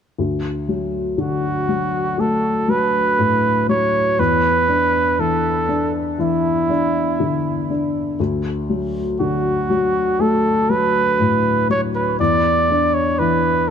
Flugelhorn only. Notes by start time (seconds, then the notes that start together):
1.21 F#4
2.20 A4
2.70 B4
3.69 C#5
4.19 B4
5.20 A4
6.20 E4
9.20 F#4
10.21 A4
10.70 B4
11.71 C#5
11.95 B4
12.20 D5
12.94 C#5
13.19 B4